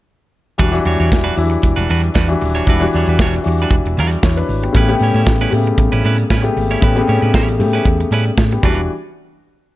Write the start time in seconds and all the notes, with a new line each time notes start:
0.58 E1 E3 G3 D4 F#4 B4, kick, closed hi-hat
0.72 E3 F#3 D4 F#4, closed hi-hat
0.78 G3
0.85 E2 G3 D4 F#4 C#5, open hi-hat
1.00 E2 G3 D4 F#4 C#5, closed hi-hat
1.11 E1, muted clean electric guitar stroke, kick, snare
1.24 G3 D4 F#4 B4, closed hi-hat
1.36 E2 E3 F#3 D4 E4, open hi-hat
1.44 G3
1.50 muted clean electric guitar stroke, closed hi-hat
1.63 E1, muted clean electric guitar stroke, kick, closed hi-hat
1.76 E1 G3 D4 F#4 B4, closed hi-hat
1.89 E2 G3 D4 F#4 B4, open hi-hat
2.03 muted clean electric guitar stroke, closed hi-hat
2.14 E2 G3 D4 F#4 B4, kick, snare
2.28 E3 G3 D4 F#4, muted clean electric guitar stroke, closed hi-hat
2.41 D#1, muted clean electric guitar stroke, open hi-hat
2.55 G3 D4 F#4 C#5, closed hi-hat
2.66 E1 E3 G3 D4 E4 F#4 B4, kick, closed hi-hat
2.80 E3 G3 D4 F#4, closed hi-hat
2.93 E2 G3 D4 F#4 C#5, open hi-hat
3.07 E2 G3 D4 F#4 B4, closed hi-hat
3.19 E1 G3 D4 F#4 C#5, kick, snare
3.34 muted clean electric guitar stroke, closed hi-hat
3.43 E2 E3 G3 D4 F#4, open hi-hat
3.47 muted clean electric guitar stroke
3.58 B4, closed hi-hat
3.62 G3 D4 F#4
3.71 E1, kick, closed hi-hat
3.85 E1, muted clean electric guitar stroke, closed hi-hat
3.97 E2 G3 D4 F#4 B4, open hi-hat
4.11 muted clean electric guitar stroke, closed hi-hat
4.22 E2 E4 C#5, muted clean electric guitar stroke, kick, snare
4.36 D4 B4, muted clean electric guitar stroke, closed hi-hat
4.49 G#1, open hi-hat
4.63 B3 G4, muted clean electric guitar stroke, closed hi-hat
4.72 A1 C#3 G3 A3 B3 C#4 G4, kick, closed hi-hat
4.77 E4 B4
4.88 C#3 A3 B3 G4, closed hi-hat
5.00 A2 G3 C#4 E4 C#5, open hi-hat
5.14 A2 G3 C#4 E4 C#5, closed hi-hat
5.27 A1, muted clean electric guitar stroke, kick, snare
5.41 G3 C#4 E4 B4, closed hi-hat
5.50 A2 C3 A3 B3 G4, muted clean electric guitar stroke, open hi-hat
5.56 C#3
5.66 muted clean electric guitar stroke, closed hi-hat
5.78 A1, muted clean electric guitar stroke, kick, closed hi-hat
5.92 A1 G3 C#4 E4 B4, closed hi-hat
6.04 A2 G3 C#4 E4 B4, open hi-hat
6.18 muted clean electric guitar stroke, closed hi-hat
6.30 A2 G3 C#4 E4 B4, kick, snare
6.42 C#3 A3 B3 G4, muted clean electric guitar stroke, closed hi-hat
6.56 G#1, muted clean electric guitar stroke, open hi-hat
6.71 G3 C#4 E4 C#5, closed hi-hat
6.80 A1 C#3 G3 A3 B3 C#4 E4 G4 B4, kick, closed hi-hat
6.95 C3 A3 B3 G4, closed hi-hat
7.01 C#3
7.08 A2 G3 C#4 E4 C#5, open hi-hat
7.22 A2 G3 C#4 E4 B4, closed hi-hat
7.34 A1 G3 C#4 E4 C#5, kick, snare
7.48 muted clean electric guitar stroke, closed hi-hat
7.59 A2 C#3 A3 B3 G4, muted clean electric guitar stroke, open hi-hat
7.73 G3 C#4 E4 B4, closed hi-hat
7.85 E2, kick, closed hi-hat
8.00 muted clean electric guitar stroke, closed hi-hat
8.11 A2 G3 C#4 E4 B4, open hi-hat
8.26 muted clean electric guitar stroke, closed hi-hat
8.38 A2, muted clean electric guitar stroke, kick, snare
8.51 B3 G4, muted clean electric guitar stroke, closed hi-hat
8.63 E1 E3 G3 D4 F#4 B4, kick, crash